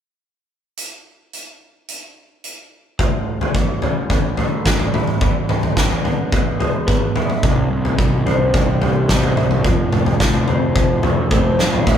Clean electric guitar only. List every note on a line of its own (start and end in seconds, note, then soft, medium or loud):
2.99 4.38 A2 medium
3.56 4.10 E3 medium
3.84 4.66 C#4 medium
4.11 5.22 E3 medium
4.39 5.22 A3 medium
4.67 5.22 C#4 medium
4.95 7.15 E4 medium
5.22 5.76 E3 medium
5.77 6.31 E3 medium
6.04 6.86 B3 medium
6.32 7.43 E3 medium
6.60 7.43 G#3 medium
6.87 7.43 B3 medium
7.16 7.43 E4 medium
7.43 8.82 C3 medium
7.98 8.53 E3 medium
8.26 9.07 C4 medium
8.54 9.65 E3 medium
8.81 9.65 G3 medium
9.09 9.65 C4 medium
9.37 9.65 E4 medium
9.65 10.19 F3 medium
10.20 10.75 F3 medium
10.48 11.31 C4 medium
10.76 11.87 F3 medium
11.04 11.87 A3 medium
11.32 11.87 C4 medium
11.60 11.88 F4 medium
11.87 11.98 A2 medium
11.87 11.98 E3 medium
11.87 11.98 A3 medium
11.87 11.98 C#4 medium
11.87 11.98 E4 medium